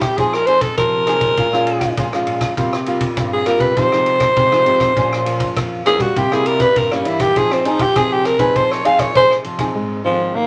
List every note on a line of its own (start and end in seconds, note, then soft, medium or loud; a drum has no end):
0.00 0.15 G2 medium
0.00 0.14 G3 medium
0.00 0.15 G3 medium
0.00 0.14 C4 medium
0.00 0.15 E4 medium
0.00 0.18 G4 medium
0.00 kick medium
0.00 cross-stick medium
0.00 ride soft
0.17 0.69 F3 loud
0.17 0.75 F3 soft
0.17 0.36 C4 soft
0.17 0.36 D#4 soft
0.17 0.36 G#4 medium
0.17 0.37 G#4 medium
0.17 kick medium
0.17 ride soft
0.33 0.48 A#4 loud
0.33 cross-stick medium
0.46 1.03 C4 medium
0.46 1.03 D#4 medium
0.46 1.04 G#4 medium
0.46 0.63 C5 loud
0.46 ride soft
0.61 0.77 A4 medium
0.61 kick medium
0.61 ride medium
0.78 1.35 C3 medium
0.78 1.16 F3 medium
0.78 1.93 A#4 loud
0.78 kick medium
0.78 cross-stick medium
0.78 ride soft
1.07 1.35 C4 medium
1.07 1.35 D#4 medium
1.07 1.36 G#4 medium
1.07 cross-stick medium
1.07 ride soft
1.19 1.34 F3 medium
1.19 kick medium
1.19 ride soft
1.37 1.88 A#2 medium
1.37 1.95 A#2 medium
1.37 1.47 G#3 medium
1.37 1.47 C#4 medium
1.37 1.47 F4 medium
1.37 kick medium
1.37 ride soft
1.53 1.93 G#3 medium
1.53 1.93 C#4 medium
1.53 1.94 F4 medium
1.53 cross-stick medium
1.67 ride soft
1.81 kick medium
1.81 cross-stick medium
1.81 ride medium
1.97 2.10 A#2 loud
1.97 2.55 F3 medium
1.97 2.07 G#3 medium
1.97 2.07 C#4 medium
1.97 2.07 F4 medium
1.97 kick medium
1.97 ride medium
2.13 2.53 G#3 medium
2.13 2.53 C#4 medium
2.13 2.54 F4 medium
2.13 cross-stick medium
2.26 2.52 A#2 medium
2.26 ride soft
2.41 kick medium
2.41 cross-stick medium
2.41 ride soft
2.57 3.08 C3 loud
2.57 3.15 C3 medium
2.57 2.75 G3 medium
2.57 2.76 A#3 medium
2.57 2.76 F4 medium
2.57 kick medium
2.57 ride soft
2.73 cross-stick medium
2.86 3.42 G3 medium
2.86 3.42 A#3 medium
2.86 3.43 F4 medium
2.86 ride soft
3.01 kick medium
3.01 ride medium
3.17 3.74 G2 medium
3.17 3.55 C4 medium
3.17 kick medium
3.17 cross-stick medium
3.17 ride soft
3.33 3.48 G#4 medium
3.46 3.74 G3 medium
3.46 3.75 A#3 medium
3.46 3.75 F4 medium
3.46 3.62 A#4 loud
3.46 cross-stick medium
3.46 ride soft
3.59 3.73 C3 medium
3.59 3.79 B4 medium
3.59 kick medium
3.59 ride soft
3.77 4.34 C3 medium
3.77 4.28 C3 medium
3.77 3.87 F3 medium
3.77 3.87 G#3 medium
3.77 3.88 D#4 medium
3.77 5.57 C5 medium
3.77 kick medium
3.77 ride soft
3.92 4.32 F3 medium
3.92 4.33 G#3 medium
3.92 4.33 D#4 medium
3.92 cross-stick medium
4.06 ride soft
4.20 kick medium
4.20 cross-stick medium
4.20 ride soft
4.37 4.49 C3 loud
4.37 4.94 C3 medium
4.37 4.47 F3 medium
4.37 4.47 G#3 medium
4.37 4.48 D#4 medium
4.37 kick medium
4.37 ride soft
4.52 4.92 F3 medium
4.52 4.92 G#3 medium
4.52 4.92 D#4 medium
4.52 cross-stick medium
4.66 4.92 C3 medium
4.66 ride soft
4.80 kick medium
4.80 cross-stick medium
4.80 ride soft
4.96 5.47 A#2 loud
4.96 5.54 A#2 medium
4.96 5.22 F3 soft
4.96 5.22 A#3 medium
4.96 5.22 C#4 medium
4.96 kick medium
4.96 ride soft
5.13 cross-stick medium
5.26 5.81 F3 medium
5.26 5.81 A#3 medium
5.26 5.82 C#4 medium
5.26 ride medium
5.40 kick medium
5.40 ride medium
5.56 6.13 F2 medium
5.56 5.95 A#3 medium
5.56 kick medium
5.56 cross-stick medium
5.56 ride medium
5.86 6.05 F3 medium
5.86 6.06 A#3 medium
5.86 6.06 C#4 medium
5.86 6.02 G#4 loud
5.86 cross-stick medium
5.86 ride soft
5.98 6.12 G3 medium
5.98 6.19 F#4 medium
5.98 kick medium
5.98 ride medium
6.16 6.67 C3 loud
6.16 6.73 C3 medium
6.16 6.25 G3 medium
6.16 6.26 A#3 medium
6.16 6.26 E4 medium
6.16 6.35 G4 medium
6.16 kick medium
6.16 ride medium
6.31 6.87 G3 medium
6.31 6.87 A#3 medium
6.31 6.87 E4 medium
6.31 6.48 G#4 medium
6.31 cross-stick medium
6.46 6.63 A#4 loud
6.46 ride medium
6.60 6.79 B4 loud
6.60 kick medium
6.60 cross-stick medium
6.60 ride medium
6.76 7.33 G2 medium
6.76 6.89 C3 medium
6.76 6.94 A#4 medium
6.76 kick medium
6.76 ride soft
6.91 7.31 G3 medium
6.91 7.32 A#3 medium
6.91 7.08 C#4 medium
6.91 7.32 E4 medium
6.91 cross-stick medium
7.05 7.31 E3 medium
7.05 7.22 E4 medium
7.05 ride medium
7.20 7.39 G4 medium
7.20 kick medium
7.20 cross-stick medium
7.20 ride medium
7.36 7.87 F3 loud
7.36 7.93 F3 medium
7.36 7.61 C4 medium
7.36 7.62 D#4 medium
7.36 7.62 G#4 medium
7.36 7.54 G#4 loud
7.36 kick medium
7.36 ride soft
7.51 7.68 C4 medium
7.51 cross-stick medium
7.65 7.83 C4 medium
7.65 7.84 D#4 medium
7.65 7.82 D#4 medium
7.65 7.84 G#4 medium
7.65 ride medium
7.79 7.98 G4 medium
7.79 kick medium
7.79 ride medium
7.96 8.53 C3 medium
7.96 8.34 F3 medium
7.96 8.36 C4 medium
7.96 8.36 D#4 medium
7.96 8.37 G#4 medium
7.96 8.14 G#4 loud
7.96 kick medium
7.96 cross-stick medium
7.96 ride medium
8.13 8.27 G4 medium
8.25 8.41 A#4 loud
8.25 cross-stick medium
8.25 ride soft
8.38 8.52 F3 medium
8.38 8.80 C4 medium
8.38 8.80 D#4 medium
8.38 8.81 G#4 medium
8.38 8.58 B4 medium
8.38 kick medium
8.38 ride medium
8.56 9.07 F3 loud
8.56 9.13 F3 medium
8.56 8.73 C5 medium
8.56 kick medium
8.56 ride soft
8.71 8.87 C#5 medium
8.71 cross-stick medium
8.85 9.11 C4 medium
8.85 9.11 D#4 medium
8.85 9.11 G#4 medium
8.85 9.02 F5 loud
8.85 ride medium
8.99 9.15 C#5 medium
8.99 kick medium
8.99 cross-stick medium
8.99 ride medium
9.15 9.73 C3 medium
9.15 9.28 F3 loud
9.15 9.44 C4 medium
9.15 9.44 D#4 medium
9.15 9.44 G#4 medium
9.15 9.34 C5 loud
9.15 kick medium
9.15 ride soft
9.31 cross-stick medium
9.44 9.71 F3 medium
9.44 ride medium
9.59 10.00 C4 medium
9.59 10.00 D#4 medium
9.59 10.01 G#4 medium
9.59 kick medium
9.59 cross-stick medium
9.59 ride soft
9.75 10.33 G#2 medium
9.75 10.01 G#3 loud
10.05 10.30 D#3 medium
10.05 10.33 D#3 medium
10.05 10.37 F3 medium
10.05 10.34 G#3 medium
10.05 10.34 C4 medium
10.35 10.47 D#3 medium
10.35 10.47 A#3 medium